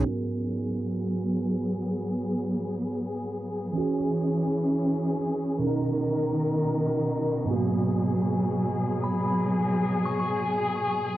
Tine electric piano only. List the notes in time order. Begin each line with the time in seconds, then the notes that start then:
0.01 G#2 B3
0.08 A#4
3.73 E3 C#4
3.78 F#4 G#4
5.59 B2 C#4
5.64 D#4 A#4
7.45 G#2 B3
7.51 A#3 F#4